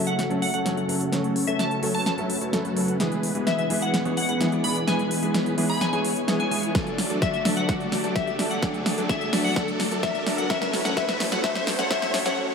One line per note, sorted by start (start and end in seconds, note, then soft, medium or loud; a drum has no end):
0.00 0.28 F#1 loud
0.00 2.96 C#3 medium
0.00 0.28 F#3 loud
0.00 0.28 A3 medium
0.00 2.96 A3 medium
0.00 0.10 C#4 medium
0.00 0.28 C#4 medium
0.00 2.96 F#4 medium
0.00 0.10 A4 loud
0.00 0.28 A4 medium
0.00 1.11 A4 medium
0.00 0.28 C#5 loud
0.00 riser medium
0.07 0.23 F#5 medium
0.07 closed hi-hat medium
0.19 snare medium
0.19 closed hi-hat medium
0.30 0.52 F#1 loud
0.30 0.39 F#3 medium
0.30 0.51 F#3 medium
0.30 0.39 A3 medium
0.30 0.51 A3 medium
0.30 0.51 C#4 medium
0.30 0.40 C#4 medium
0.30 0.51 A4 medium
0.30 0.40 A4 medium
0.30 0.51 E5 medium
0.30 closed hi-hat soft
0.42 0.50 F#5 medium
0.42 open hi-hat loud
0.54 0.75 F#1 medium
0.54 0.73 F#3 medium
0.54 0.73 A3 medium
0.54 0.73 C#4 medium
0.54 0.73 A4 medium
0.54 0.73 C#5 medium
0.54 0.61 F#5 medium
0.54 closed hi-hat medium
0.65 0.74 F#3 medium
0.65 0.75 A3 medium
0.65 0.75 C#4 medium
0.65 0.75 A4 loud
0.65 snare medium
0.65 closed hi-hat medium
0.77 1.10 F#1 loud
0.77 1.10 F#3 medium
0.77 1.10 A3 medium
0.77 1.10 C#4 medium
0.77 1.10 A4 medium
0.77 1.10 F#5 medium
0.77 closed hi-hat soft
0.88 0.98 F#3 medium
0.88 0.98 A3 medium
0.88 0.98 C#4 medium
0.88 0.98 A4 medium
0.88 open hi-hat loud
1.01 closed hi-hat medium
1.12 1.45 F#1 loud
1.12 1.27 F#3 medium
1.12 1.45 F#3 medium
1.12 1.27 A3 medium
1.12 1.45 A3 medium
1.12 1.45 C#4 medium
1.12 1.27 C#4 medium
1.12 1.45 A4 medium
1.12 1.27 A4 medium
1.12 4.84 B4 medium
1.12 1.45 C#5 loud
1.12 snare medium
1.12 closed hi-hat medium
1.24 closed hi-hat soft
1.36 open hi-hat loud
1.47 1.81 F#1 medium
1.47 1.56 F#3 medium
1.47 1.80 F#3 loud
1.47 1.57 A3 medium
1.47 1.80 A3 medium
1.47 1.80 C#4 medium
1.47 1.57 C#4 medium
1.47 1.80 A4 medium
1.47 1.57 A4 medium
1.47 1.80 C#5 loud
1.47 1.57 E5 medium
1.47 closed hi-hat medium
1.59 1.75 A5 medium
1.59 snare medium
1.59 closed hi-hat soft
1.71 closed hi-hat soft
1.82 2.16 F#1 loud
1.82 1.97 F#3 medium
1.82 2.15 F#3 medium
1.82 1.97 A3 medium
1.82 2.15 A3 medium
1.82 2.15 C#4 medium
1.82 1.98 C#4 medium
1.82 2.15 A4 medium
1.82 1.98 A4 loud
1.82 2.15 C#5 loud
1.82 open hi-hat loud
1.94 2.02 A5 medium
1.94 open hi-hat medium
2.06 2.14 A5 medium
2.06 snare medium
2.06 closed hi-hat medium
2.17 2.39 F#1 loud
2.17 2.27 F#3 medium
2.17 2.39 F#3 medium
2.17 2.27 A3 medium
2.17 2.39 A3 medium
2.17 2.39 C#4 medium
2.17 2.27 C#4 medium
2.17 2.39 A4 medium
2.17 2.27 A4 loud
2.17 2.39 E5 medium
2.17 closed hi-hat soft
2.30 open hi-hat loud
2.41 2.63 F#1 loud
2.41 2.61 F#3 medium
2.41 2.61 A3 medium
2.41 2.61 C#4 medium
2.41 2.61 A4 medium
2.41 2.61 C#5 medium
2.41 closed hi-hat medium
2.52 2.62 F#3 medium
2.52 2.62 A3 medium
2.52 2.62 C#4 medium
2.52 2.63 A4 loud
2.52 snare medium
2.52 closed hi-hat medium
2.65 2.98 F#2 loud
2.65 2.97 F#3 medium
2.65 2.97 A3 medium
2.65 2.97 C#4 medium
2.65 2.97 A4 medium
2.65 2.97 F#5 medium
2.65 closed hi-hat soft
2.76 2.85 F#3 medium
2.76 2.86 A3 medium
2.76 2.86 C#4 medium
2.76 2.86 A4 medium
2.76 open hi-hat loud
2.88 closed hi-hat medium
2.99 3.33 E1 loud
2.99 3.14 E3 medium
2.99 3.32 E3 loud
2.99 6.71 E3 medium
2.99 3.15 G#3 medium
2.99 3.32 G#3 medium
2.99 3.32 B3 medium
2.99 6.71 B3 medium
2.99 3.15 B3 medium
2.99 3.32 G#4 medium
2.99 6.71 G#4 medium
2.99 3.15 G#4 medium
2.99 3.32 B4 loud
2.99 snare medium
2.99 closed hi-hat medium
3.12 closed hi-hat soft
3.23 open hi-hat loud
3.35 3.68 E1 loud
3.35 3.44 E3 medium
3.35 3.68 E3 loud
3.35 3.44 G#3 medium
3.35 3.67 G#3 medium
3.35 3.67 B3 medium
3.35 3.44 B3 medium
3.35 3.67 G#4 medium
3.35 3.45 G#4 medium
3.35 3.67 B4 loud
3.35 closed hi-hat soft
3.47 3.54 E5 medium
3.47 snare medium
3.47 closed hi-hat soft
3.58 3.66 E5 medium
3.58 closed hi-hat soft
3.70 4.03 E1 loud
3.70 3.85 E3 medium
3.70 4.03 E3 medium
3.70 3.85 G#3 medium
3.70 4.03 G#3 medium
3.70 4.03 B3 medium
3.70 3.85 B3 medium
3.70 4.03 G#4 medium
3.70 3.85 G#4 loud
3.70 4.03 B4 loud
3.70 open hi-hat loud
3.82 3.98 F#5 medium
3.82 closed hi-hat soft
3.94 snare medium
3.94 closed hi-hat medium
4.05 4.27 E1 medium
4.05 4.14 E3 medium
4.05 4.26 E3 medium
4.05 4.15 G#3 medium
4.05 4.26 G#3 medium
4.05 4.26 B3 medium
4.05 4.15 B3 medium
4.05 4.26 G#4 medium
4.05 4.15 G#4 loud
4.05 4.26 C#5 medium
4.05 closed hi-hat soft
4.17 4.25 F#5 medium
4.17 open hi-hat loud
4.29 4.50 E1 loud
4.29 4.48 E3 medium
4.29 4.48 G#3 medium
4.29 4.48 B3 medium
4.29 4.48 G#4 medium
4.29 4.48 B4 medium
4.29 4.36 F#5 medium
4.29 closed hi-hat soft
4.40 4.50 E3 medium
4.40 4.50 G#3 medium
4.40 4.50 B3 medium
4.40 4.50 G#4 loud
4.40 snare medium
4.40 closed hi-hat medium
4.52 4.85 E1 loud
4.52 4.85 E3 medium
4.52 4.85 G#3 medium
4.52 4.85 B3 medium
4.52 4.85 G#4 medium
4.52 4.85 D5 loud
4.52 closed hi-hat soft
4.63 4.73 E3 medium
4.63 4.73 G#3 medium
4.63 4.73 B3 medium
4.63 4.74 G#4 medium
4.63 4.80 B5 medium
4.63 open hi-hat loud
4.76 closed hi-hat medium
4.87 5.20 E1 medium
4.87 5.02 E3 medium
4.87 5.20 E3 loud
4.87 5.02 G#3 medium
4.87 5.20 G#3 medium
4.87 5.20 B3 medium
4.87 5.02 B3 medium
4.87 5.20 G#4 medium
4.87 5.02 G#4 medium
4.87 5.20 B4 loud
4.87 6.73 C#5 medium
4.87 5.03 G#5 medium
4.87 snare medium
4.87 closed hi-hat soft
4.99 closed hi-hat soft
5.11 open hi-hat loud
5.22 5.56 E1 medium
5.22 5.32 E3 medium
5.22 5.55 E3 loud
5.22 5.32 G#3 medium
5.22 5.55 G#3 medium
5.22 5.55 B3 medium
5.22 5.32 B3 medium
5.22 5.55 G#4 medium
5.22 5.32 G#4 medium
5.22 5.55 B4 loud
5.22 closed hi-hat soft
5.34 snare medium
5.34 closed hi-hat soft
5.46 closed hi-hat soft
5.57 5.91 E1 loud
5.57 5.72 E3 medium
5.57 5.90 E3 medium
5.57 5.72 G#3 medium
5.57 5.90 G#3 medium
5.57 5.90 B3 medium
5.57 5.73 B3 medium
5.57 5.90 G#4 medium
5.57 5.73 G#4 loud
5.57 5.90 B4 loud
5.57 open hi-hat loud
5.69 5.79 B5 loud
5.69 open hi-hat medium
5.81 5.89 G#5 medium
5.81 snare medium
5.81 closed hi-hat soft
5.92 6.26 E1 loud
5.92 6.02 E3 medium
5.92 6.14 E3 medium
5.92 6.02 G#3 medium
5.92 6.14 G#3 medium
5.92 6.14 B3 medium
5.92 6.02 B3 medium
5.92 6.14 G#4 medium
5.92 6.02 G#4 loud
5.92 6.14 C#5 medium
5.92 6.00 G#5 medium
5.92 closed hi-hat soft
6.05 open hi-hat loud
6.16 closed hi-hat soft
6.27 6.73 E1 loud
6.27 6.37 E3 medium
6.27 6.72 E3 medium
6.27 6.37 G#3 medium
6.27 6.72 G#3 medium
6.27 6.72 B3 medium
6.27 6.37 B3 medium
6.27 6.72 G#4 medium
6.27 6.38 G#4 loud
6.27 6.72 C#5 loud
6.27 snare medium
6.27 closed hi-hat medium
6.40 6.47 G#5 medium
6.40 closed hi-hat soft
6.51 6.60 E3 medium
6.51 6.61 G#3 medium
6.51 6.61 B3 medium
6.51 6.61 G#4 medium
6.51 6.59 G#5 medium
6.51 open hi-hat loud
6.63 closed hi-hat medium
6.74 7.08 D2 loud
6.74 10.46 D3 medium
6.74 6.89 F#3 medium
6.74 7.07 F#3 medium
6.74 6.90 A3 medium
6.74 12.33 A3 medium
6.74 7.07 A3 medium
6.74 7.07 D4 medium
6.74 6.90 D4 medium
6.74 10.46 F#4 medium
6.74 12.33 A4 medium
6.74 7.07 A4 medium
6.74 6.90 A4 medium
6.74 7.07 D5 loud
6.74 kick loud
6.74 snare medium
6.74 closed hi-hat medium
6.87 closed hi-hat soft
6.98 snare medium
6.98 open hi-hat loud
7.10 7.43 D2 loud
7.10 7.19 F#3 medium
7.10 7.42 F#3 medium
7.10 7.19 A3 medium
7.10 7.42 A3 medium
7.10 7.42 D4 medium
7.10 7.19 D4 medium
7.10 7.42 A4 medium
7.10 7.20 A4 medium
7.10 7.42 D5 loud
7.10 closed hi-hat soft
7.22 7.29 E5 medium
7.22 kick loud
7.22 snare medium
7.22 closed hi-hat soft
7.34 7.41 E5 medium
7.34 closed hi-hat soft
7.45 7.66 D2 medium
7.45 7.60 F#3 medium
7.45 7.67 F#3 medium
7.45 7.60 A3 medium
7.45 7.67 A3 medium
7.45 7.67 D4 medium
7.45 7.60 D4 medium
7.45 7.67 A4 medium
7.45 7.60 A4 loud
7.45 7.67 D5 medium
7.45 snare medium
7.45 open hi-hat loud
7.57 7.67 F#5 medium
7.57 closed hi-hat medium
7.68 8.02 D2 loud
7.68 7.83 F#3 medium
7.68 8.01 F#3 medium
7.68 7.83 A3 medium
7.68 8.01 A3 medium
7.68 8.01 D4 medium
7.68 7.83 D4 medium
7.68 8.01 A4 medium
7.68 7.84 A4 medium
7.68 8.01 D5 loud
7.68 kick loud
7.68 snare medium
7.68 closed hi-hat medium
7.80 closed hi-hat soft
7.92 snare medium
7.92 open hi-hat loud
8.03 8.37 D2 medium
8.03 8.13 F#3 medium
8.03 8.36 F#3 medium
8.03 8.13 A3 medium
8.03 8.36 A3 medium
8.03 8.36 D4 medium
8.03 8.13 D4 medium
8.03 8.36 A4 medium
8.03 8.13 A4 medium
8.03 8.36 D5 loud
8.03 closed hi-hat medium
8.16 8.23 E5 medium
8.16 kick loud
8.16 snare medium
8.16 closed hi-hat medium
8.27 8.35 E5 medium
8.27 closed hi-hat soft
8.38 8.60 D2 loud
8.38 8.53 F#3 medium
8.38 8.61 F#3 medium
8.38 8.54 A3 medium
8.38 8.61 A3 medium
8.38 8.61 D4 medium
8.38 8.54 D4 medium
8.38 8.61 A4 medium
8.38 8.54 A4 loud
8.38 8.61 D5 loud
8.38 snare medium
8.38 open hi-hat loud
8.51 8.61 F#5 medium
8.51 closed hi-hat soft
8.62 8.95 D2 loud
8.62 8.77 F#3 medium
8.62 8.95 F#3 medium
8.62 8.77 A3 medium
8.62 8.95 A3 medium
8.62 8.95 D4 medium
8.62 8.77 D4 medium
8.62 8.95 A4 medium
8.62 8.78 A4 medium
8.62 8.95 D5 loud
8.62 kick loud
8.62 snare medium
8.62 closed hi-hat medium
8.74 closed hi-hat soft
8.86 snare medium
8.86 open hi-hat loud
8.97 9.31 D2 loud
8.97 9.07 F#3 medium
8.97 9.30 F#3 medium
8.97 9.07 A3 medium
8.97 9.30 A3 medium
8.97 9.30 D4 medium
8.97 9.07 D4 medium
8.97 9.30 A4 medium
8.97 9.07 A4 medium
8.97 9.30 D5 loud
8.97 closed hi-hat medium
9.09 9.17 E5 medium
9.09 kick loud
9.09 snare medium
9.09 closed hi-hat medium
9.21 9.29 E5 medium
9.21 closed hi-hat soft
9.32 9.54 D2 loud
9.32 9.47 F#3 medium
9.32 9.54 F#3 medium
9.32 9.54 A3 medium
9.32 9.47 A3 medium
9.32 9.54 D4 medium
9.32 9.48 D4 medium
9.32 9.54 A4 medium
9.32 9.48 A4 loud
9.32 9.54 D5 loud
9.32 snare medium
9.32 open hi-hat loud
9.44 9.54 F#5 medium
9.44 open hi-hat medium
9.56 9.89 D2 loud
9.56 9.71 F#3 medium
9.56 9.89 F#3 medium
9.56 9.89 A3 medium
9.56 9.71 A3 medium
9.56 9.89 D4 medium
9.56 9.71 D4 medium
9.56 9.89 A4 medium
9.56 9.71 A4 medium
9.56 9.89 D5 loud
9.56 kick loud
9.56 snare medium
9.56 closed hi-hat medium
9.68 closed hi-hat soft
9.80 snare medium
9.80 open hi-hat loud
9.91 10.24 D2 loud
9.91 10.00 F#3 medium
9.91 10.24 F#3 loud
9.91 10.01 A3 medium
9.91 10.24 A3 medium
9.91 10.24 D4 medium
9.91 10.01 D4 medium
9.91 10.24 A4 medium
9.91 10.01 A4 medium
9.91 10.24 D5 loud
9.91 closed hi-hat medium
10.03 10.11 E5 medium
10.03 kick loud
10.03 snare medium
10.03 closed hi-hat medium
10.15 10.22 E5 medium
10.15 closed hi-hat soft
10.26 10.48 D2 medium
10.26 10.41 F#3 medium
10.26 10.48 F#3 medium
10.26 10.41 A3 medium
10.26 10.48 A3 medium
10.26 10.48 D4 medium
10.26 10.41 D4 medium
10.26 10.48 A4 medium
10.26 10.41 A4 loud
10.26 10.48 D5 loud
10.26 snare medium
10.26 open hi-hat loud
10.38 10.48 F#5 medium
10.38 closed hi-hat medium
10.49 10.83 A1 loud
10.49 12.36 C#3 medium
10.49 10.64 F#3 medium
10.49 10.82 F#3 loud
10.49 10.65 A3 medium
10.49 10.82 A3 medium
10.49 10.82 C#4 medium
10.49 10.65 C#4 medium
10.49 12.36 E4 medium
10.49 10.82 A4 medium
10.49 10.65 A4 medium
10.49 10.82 C#5 loud
10.49 10.57 E5 medium
10.49 kick loud
10.49 snare medium
10.49 closed hi-hat medium
10.62 10.69 E5 medium
10.62 snare medium
10.62 closed hi-hat soft
10.73 snare medium
10.73 open hi-hat loud
10.85 10.95 A1 medium
10.85 10.94 F#3 medium
10.85 10.95 F#3 loud
10.85 10.94 A3 medium
10.85 10.95 A3 medium
10.85 10.95 C#4 medium
10.85 10.94 C#4 medium
10.85 10.95 A4 medium
10.85 10.95 C#5 loud
10.85 10.95 F#5 medium
10.85 snare medium
10.85 closed hi-hat medium
10.96 11.30 A1 medium
10.96 11.11 F#3 medium
10.96 11.29 F#3 loud
10.96 11.11 A3 medium
10.96 11.29 A3 medium
10.96 11.29 C#4 medium
10.96 11.12 C#4 medium
10.96 11.29 A4 medium
10.96 11.12 A4 medium
10.96 11.29 C#5 loud
10.96 11.04 E5 medium
10.96 kick loud
10.96 snare medium
10.96 closed hi-hat medium
11.08 11.16 E5 medium
11.08 snare medium
11.08 closed hi-hat soft
11.20 snare loud
11.20 open hi-hat loud
11.31 11.41 A1 loud
11.31 11.41 F#3 medium
11.31 11.42 F#3 loud
11.31 11.41 A3 medium
11.31 11.42 A3 medium
11.31 11.42 C#4 medium
11.31 11.41 C#4 medium
11.31 11.42 A4 medium
11.31 11.42 C#5 loud
11.31 11.42 F#5 medium
11.31 snare medium
11.31 closed hi-hat medium
11.43 11.77 A1 medium
11.43 11.58 F#3 medium
11.43 11.76 F#3 loud
11.43 11.58 A3 medium
11.43 11.76 A3 medium
11.43 11.76 C#4 medium
11.43 11.59 C#4 medium
11.43 11.76 A4 medium
11.43 11.59 A4 loud
11.43 11.76 C#5 loud
11.43 11.51 E5 medium
11.43 kick loud
11.43 snare medium
11.43 closed hi-hat medium
11.55 11.63 E5 medium
11.55 snare medium
11.55 closed hi-hat soft
11.67 snare loud
11.67 open hi-hat loud
11.78 11.88 A1 loud
11.78 11.88 F#3 medium
11.78 11.89 F#3 loud
11.78 11.88 A3 medium
11.78 11.89 A3 medium
11.78 11.89 C#4 medium
11.78 11.88 C#4 medium
11.78 11.89 A4 medium
11.78 11.88 A4 medium
11.78 11.89 C#5 loud
11.78 11.89 F#5 medium
11.78 snare medium
11.78 closed hi-hat medium
11.90 12.24 A1 loud
11.90 12.05 F#3 medium
11.90 12.23 F#3 loud
11.90 12.23 A3 medium
11.90 12.05 A3 medium
11.90 12.23 C#4 loud
11.90 12.05 C#4 medium
11.90 12.23 A4 medium
11.90 12.06 A4 loud
11.90 12.23 C#5 loud
11.90 11.98 E5 medium
11.90 kick loud
11.90 snare loud
11.90 closed hi-hat medium
12.02 12.10 E5 medium
12.02 snare medium
12.02 closed hi-hat soft
12.14 snare loud
12.14 open hi-hat loud
12.25 12.35 A1 loud
12.25 12.35 F#3 medium
12.25 12.36 F#3 loud
12.25 12.35 A3 medium
12.25 12.36 A3 medium
12.25 12.36 C#4 medium
12.25 12.35 C#4 medium
12.25 12.36 A4 medium
12.25 12.35 A4 medium
12.25 12.36 C#5 loud
12.25 12.36 F#5 medium
12.25 snare medium
12.25 closed hi-hat medium
12.38 12.55 F#3 loud
12.38 12.55 A3 medium
12.38 12.55 C#4 medium
12.38 12.55 A4 medium
12.38 12.55 C#5 loud